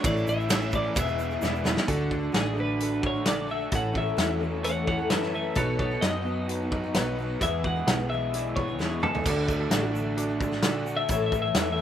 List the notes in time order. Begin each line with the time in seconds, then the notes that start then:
0.04 A1 A2 E3 A3 C#4 E4 A4 C#5 D5, kick, ride bell, shaker
0.08 E4
0.17 shaker
0.26 A1 E3 A3 E4 E5, shaker
0.30 C#4 E4
0.40 shaker
0.50 A2 E3 A3 C#4 E4 A4 C#5, snare, ride bell, shaker
0.62 shaker
0.72 E3 A3 C#4 E4 D5, kick, shaker
0.84 A3 C#4 E4
0.95 E1 E2 B2 E3 G#3 B3 E4 G#4 B4, kick, ride bell, shaker
1.00 E5
1.06 E3 G#3 B3 E4, shaker
1.18 E3 G#3 B3 E4, shaker
1.30 E3 G#3 B3 E4, shaker
1.41 E1 E2 B2 E3 G#3 B3 E4 G#4 D5, snare, shaker
1.55 shaker
1.63 E1 E3 G#3 B3 E4, snare, shaker
1.68 E4
1.76 E3 G#3 B3 E4, snare
1.87 D2 D3 A3 D4 F#4 A4, kick, closed hi-hat
2.10 D3 A3 D4 F#4, kick
2.20 A3 D4 F#4
2.32 A1 D3 A3 D4 F#4 G#4 A4, snare, closed hi-hat
2.44 A3 D4 F#4
2.56 D3 A3 D4 F#4 B4
2.79 D3 D4 F#4 A4, closed hi-hat
2.92 A3 D4 F#4
3.02 D3 A3 D4 F#4, kick
3.07 F#4 C#5
3.14 A3 D4 F#4
3.26 A#1 D3 A3 D4 F#4 A4 D5, snare, closed hi-hat
3.48 D3 A3 D4 A4 E5
3.52 F#4
3.60 A3 D4 F#4
3.72 A1 A2 E3 A3 C#4 E4 A4 F#5, kick, closed hi-hat
3.93 E3 A3 C#4 A4, kick
3.98 E5
4.06 A3 C#4 A4
4.17 E2 A2 E3 A3 C#4 E4 F#4 A4, snare, closed hi-hat
4.30 A3 C#4 A4
4.41 E3 A3 C#4 A4
4.63 A3 C#4 E4 A4 C#5 F#5, closed hi-hat
4.76 A3 C#4 A4
4.86 E3 A3 E4 C#5 F#5, kick
4.90 C#4 A4
4.98 A3 C#4 A4
5.09 F#2 A2 E3 A3 C#4 E4 A4 B4 E5, snare, closed hi-hat
5.22 snare
5.32 E3 A3 C#4 A4 B4 E5
5.55 B1 B2 F#3 B3 D#4 F#4 A4 B4 C#5, kick, closed hi-hat
5.79 F#3 B3 D#4 F#4 A4 C#5, kick
5.91 B3 D#4 F#4
6.01 F#2 B2 F#3 B3 D#4 F#4 B4 D#5, snare, closed hi-hat
6.14 B3 D#4 F#4
6.25 F#3 B3 D#4 F#4
6.48 F#3 D#4 F#4 B4, closed hi-hat
6.60 B3 D#4 F#4
6.72 F#3 B3 D#4 F#4, kick
6.84 B3 D#4 F#4
6.94 B1 B2 F#3 B3 D#4 F#4 B4, snare, closed hi-hat
6.98 D#4 F#4
7.18 F#3 B3 D#4 F#4
7.22 F#4
7.40 E2 B2 E4 G#4 B4 E5, kick, closed hi-hat
7.44 E3 G#3 B3 G#4
7.64 E3 G#3 B3 G#4 F#5, kick
7.76 E3 G#3 B3 G#4
7.86 B1 E2 B2 E3 G#3 B3 E4 G#4 B4, snare, closed hi-hat
7.99 E3 G#3 B3 G#4
8.10 E3 G#3 B3 E5
8.14 G#4
8.33 E3 E4 G#4 D5, closed hi-hat
8.46 E3 G#3 B3 G#4
8.56 E3 G#3 B3 G#4 C#5, kick
8.68 E3 G#3 B3 G#4
8.79 E2 B2 E3 G#3 B3 E4 G#4 B4, snare
9.00 E3 G#3 B3 G#4 A4, mid tom
9.13 E3 G#3 B3 G#4, floor tom
9.24 D2 D3 A3 D4 F#4 A4 D5, kick, closed hi-hat, crash, shaker
9.48 D3 A3 D4 F#4, kick, shaker
9.59 A3 D4 F#4
9.71 A1 D3 A3 D4 F#4 A4 D5, snare, closed hi-hat, shaker
9.83 A3 D4 F#4
9.95 D3 A3 D4 F#4, shaker
10.16 D3 F#4 A4 D5, closed hi-hat, shaker
10.28 A3 D4 F#4
10.41 D3 A3 D4 F#4, kick, shaker
10.52 A3 D4 F#4, snare
10.62 A#1 D3 A3 D4 F#4 A4 D5, snare, closed hi-hat, shaker
10.86 D3 A3 D4 F#4, shaker
10.97 E5
11.08 A1 A2 E3 A3 C#4 E4 A4 C#5 E5, kick, closed hi-hat, shaker
11.26 E5
11.32 E3 A3 C#4, kick, shaker
11.36 A4
11.42 A4 E5
11.47 A3 C#4
11.55 E2 A2 E3 A3 C#4 E4 A4 B4 E5, snare, closed hi-hat, shaker
11.68 A3 C#4 A4
11.72 E5
11.78 E3 A3